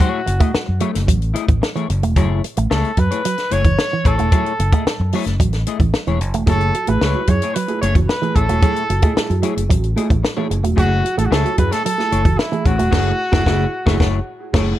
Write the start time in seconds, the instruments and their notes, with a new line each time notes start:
Already playing: trumpet F#4
0.00 clean electric guitar F#3 A3 E4 G#4 C#5, kick, closed hi-hat
0.26 fingered electric bass F#1, muted clean electric guitar stroke, closed hi-hat
0.40 clean electric guitar A3 E4 G#4 D#5, kick, closed hi-hat
0.53 muted clean electric guitar stroke, muted fingered electric bass stroke, snare
0.66 fingered electric bass F#2, muted clean electric guitar stroke
0.80 clean electric guitar F#3 A3 E4 G#4 C#5, closed hi-hat
0.93 fingered electric bass F#1, muted clean electric guitar stroke, snare, closed hi-hat
1.07 fingered electric bass A1, clean electric guitar F#3, muted clean electric guitar stroke, kick, closed hi-hat
1.22 closed hi-hat
1.33 clean electric guitar A3 E4 G#4 D#5, muted clean electric guitar stroke, closed hi-hat
1.48 fingered electric bass A1, clean electric guitar E3, muted clean electric guitar stroke, kick, closed hi-hat
1.61 muted clean electric guitar stroke, snare
1.76 clean electric guitar E3 A3 E4 G#4 C#5, closed hi-hat
1.89 fingered electric bass F#1, muted clean electric guitar stroke, closed hi-hat
2.03 fingered electric bass E1, clean electric guitar A3, muted clean electric guitar stroke, closed hi-hat
2.16 fingered electric bass F#1, clean electric guitar F#3 A3 E4 G#4 C#5, kick, closed hi-hat
2.44 muted clean electric guitar stroke, closed hi-hat
2.57 fingered electric bass A1, clean electric guitar A3, muted clean electric guitar stroke, closed hi-hat
2.70 fingered electric bass C#2, clean electric guitar A3 E4 G#4 C#5, trumpet A4, snare
2.85 closed hi-hat
2.97 fingered electric bass F#2, clean electric guitar F#3, trumpet B4, muted clean electric guitar stroke, kick, closed hi-hat
3.11 clean electric guitar A3 E4 G#4 C#5, closed hi-hat
3.24 clean electric guitar F#3, muted clean electric guitar stroke, closed hi-hat
3.38 snare, closed hi-hat
3.50 fingered electric bass F#1, clean electric guitar A3 E4 G#4 C#5, trumpet C#5, muted clean electric guitar stroke, closed hi-hat
3.64 clean electric guitar E3, muted clean electric guitar stroke, kick, closed hi-hat
3.78 muted clean electric guitar stroke, snare
3.91 clean electric guitar E3, muted clean electric guitar stroke
4.04 fingered electric bass A1, clean electric guitar A3 E4 G#4 C#5, trumpet A4, muted clean electric guitar stroke, kick, closed hi-hat
4.18 fingered electric bass E1, clean electric guitar A3 E4 G#4 C#5, closed hi-hat
4.31 clean electric guitar F#3 A3 E4 G#4 C#5, kick, closed hi-hat
4.46 closed hi-hat
4.59 fingered electric bass F#1, muted clean electric guitar stroke, closed hi-hat
4.72 clean electric guitar A3 E4 G#4 D#5, kick, closed hi-hat
4.86 muted fingered electric bass stroke, muted clean electric guitar stroke, snare
5.00 fingered electric bass F#2, muted clean electric guitar stroke
5.12 clean electric guitar F#3 A3 E4 G#4 C#5, open hi-hat
5.26 fingered electric bass F#1, muted clean electric guitar stroke, snare, closed hi-hat
5.40 fingered electric bass A1, clean electric guitar F#3, muted clean electric guitar stroke, kick, closed hi-hat
5.53 snare, closed hi-hat
5.67 clean electric guitar A3 E4 G#4 D#5, muted clean electric guitar stroke, closed hi-hat
5.80 fingered electric bass A1, clean electric guitar E3, muted clean electric guitar stroke, kick, closed hi-hat
5.94 muted clean electric guitar stroke, snare
6.07 fingered electric bass E1, clean electric guitar E3 A3 E4 G#4 C#5, closed hi-hat
6.21 fingered electric bass F#1, muted clean electric guitar stroke, closed hi-hat
6.34 fingered electric bass E1, clean electric guitar A3, muted clean electric guitar stroke, closed hi-hat
6.46 fingered electric bass F#1, clean electric guitar F#3 A3 E4 G#4 C#5, upright piano A3 E4 G#4, trumpet A4, kick, closed hi-hat
6.61 closed hi-hat
6.74 upright piano F#3, muted clean electric guitar stroke, closed hi-hat
6.87 fingered electric bass A1, upright piano A3 E4 G#4, clean electric guitar A3, trumpet B4, muted clean electric guitar stroke, closed hi-hat
7.01 fingered electric bass C#2, clean electric guitar A3 E4 G#4 C#5, upright piano E4 G#4, snare
7.15 upright piano F#3
7.27 fingered electric bass F#2, clean electric guitar F#3, upright piano E4 G#4, trumpet C#5, muted clean electric guitar stroke, kick, closed hi-hat
7.42 clean electric guitar A3 E4 G#4 C#5, closed hi-hat
7.55 clean electric guitar F#3, trumpet B4, muted clean electric guitar stroke, closed hi-hat
7.68 upright piano A3 E4 G#4, closed hi-hat
7.82 fingered electric bass F#1, clean electric guitar A3 E4 G#4 C#5, trumpet C#5, muted clean electric guitar stroke, closed hi-hat
7.95 clean electric guitar E3, upright piano F#3, muted clean electric guitar stroke, kick, closed hi-hat
8.09 trumpet B4, muted clean electric guitar stroke, snare
8.22 clean electric guitar E3, upright piano A3 E4 G#4, muted clean electric guitar stroke, closed hi-hat
8.35 fingered electric bass A1, clean electric guitar A3 E4 G#4 C#5, trumpet A4, muted clean electric guitar stroke, kick, closed hi-hat
8.49 fingered electric bass E1, upright piano F#3, clean electric guitar A3 E4 G#4 C#5, closed hi-hat
8.62 clean electric guitar F#3 A3 E4 G#4 C#5, upright piano A3 E4 G#4, kick, closed hi-hat
8.76 closed hi-hat
8.89 fingered electric bass F#1, upright piano F#3, muted clean electric guitar stroke, closed hi-hat
9.02 upright piano A3 E4 G#4, clean electric guitar A3 E4 G#4 D#5, kick, closed hi-hat
9.15 upright piano E4 G#4, muted clean electric guitar stroke, muted fingered electric bass stroke, snare
9.29 fingered electric bass F#2, upright piano F#3, muted clean electric guitar stroke, closed hi-hat
9.42 clean electric guitar F#3 A3 E4 G#4 C#5, upright piano E4 G#4, closed hi-hat
9.56 fingered electric bass F#1, muted clean electric guitar stroke, closed hi-hat
9.69 fingered electric bass A1, clean electric guitar F#3, upright piano F#3, muted clean electric guitar stroke, kick, closed hi-hat
9.84 closed hi-hat
9.96 upright piano A3 E4 G#4, clean electric guitar A3 E4 G#4 D#5, muted clean electric guitar stroke, closed hi-hat
10.10 fingered electric bass A1, clean electric guitar E3, upright piano E4 G#4, muted clean electric guitar stroke, kick, closed hi-hat
10.23 muted clean electric guitar stroke, snare
10.37 clean electric guitar E3 A3 E4 G#4 C#5, upright piano A3 E4 G#4
10.50 fingered electric bass F#1, muted clean electric guitar stroke, closed hi-hat
10.63 fingered electric bass E1, upright piano F#3, clean electric guitar A3, muted clean electric guitar stroke, closed hi-hat
10.76 fingered electric bass F#1, clean electric guitar F#3 A3 E4 G#4 C#5, upright piano A3 E4 G#4, trumpet F#4, kick, closed hi-hat
11.04 upright piano F#3, muted clean electric guitar stroke, closed hi-hat
11.17 fingered electric bass A1, upright piano A3 E4 G#4, clean electric guitar A3, trumpet A4, muted clean electric guitar stroke, closed hi-hat
11.26 trumpet F#4
11.31 fingered electric bass C#2, clean electric guitar A3 E4 G#4 C#5, upright piano E4 G#4, trumpet A4, snare
11.45 upright piano F#3, closed hi-hat
11.57 fingered electric bass F#2, clean electric guitar F#3, upright piano E4 G#4, trumpet B4, muted clean electric guitar stroke, kick, closed hi-hat
11.71 clean electric guitar A3 E4 G#4 C#5, trumpet A4, snare, closed hi-hat
11.84 clean electric guitar F#3, trumpet A4, muted clean electric guitar stroke, closed hi-hat
11.98 upright piano A3 E4 G#4, snare
12.12 fingered electric bass F#1, clean electric guitar A3 E4 G#4 C#5, muted clean electric guitar stroke, closed hi-hat
12.25 clean electric guitar E3, upright piano F#3, muted clean electric guitar stroke, kick, closed hi-hat
12.39 trumpet E4, muted clean electric guitar stroke, snare
12.52 clean electric guitar E3, upright piano A3 E4 G#4, muted clean electric guitar stroke, closed hi-hat
12.65 fingered electric bass A1, clean electric guitar A3 E4 G#4 C#5, trumpet F#4, muted clean electric guitar stroke, kick, closed hi-hat
12.78 fingered electric bass E1, upright piano F#3, clean electric guitar A3 E4 G#4 C#5, closed hi-hat
12.91 fingered electric bass F#1, clean electric guitar A3 E4 G#4 C#5, upright piano A3 E4 G#4, kick, snare, crash
13.32 fingered electric bass F#1, upright piano A3 E4 G#4, clean electric guitar A3 E4 G#4, kick, snare
13.45 fingered electric bass F#1, clean electric guitar A3 E4 G#4, upright piano E4 G#4, kick, snare
13.86 fingered electric bass F#1, clean electric guitar A3 E4 G#4 C#5, upright piano E4 G#4, kick, snare
13.99 fingered electric bass F#1, clean electric guitar A3 E4 G#4 C#5, kick, snare
14.53 fingered electric bass F#1, upright piano A3 E4 G#4, clean electric guitar A3 E4 G#4 C#5, kick, snare, crash